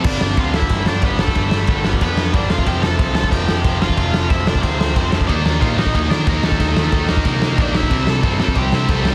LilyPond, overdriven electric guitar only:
\new Staff \with { instrumentName = "Overdriven electric guitar" } { \time 4/4 \key f \lydian \tempo 4 = 183 <d' d''>8 <d' d''>8 <f' f''>8 <e' e''>4 <d' d''>8 <b b'>8 <a a'>8~ | <a a'>4. <b b'>8 <b b'>4 <d' d''>8 <f' f''>8 | <g' g''>8 <a' a''>4 <a' a''>8 <g' g''>4. <f' f''>8 | <f' f''>4 <e' e''>8 <d' d''>8 <c' c''>8 <c' c''>8 <c' c''>8 <a a'>8 |
<d' d''>8 <d' d''>8 <f' f''>8 <ees' ees''>4 <d' d''>8 <bes bes'>8 <a a'>8~ | <a a'>4. <bes bes'>8 <bes bes'>4 <d' d''>8 <e' e''>8~ | <e' e''>8 <a' a''>4. <g' g''>8 <e' e''>8 <a a'>8 <g g'>8 | }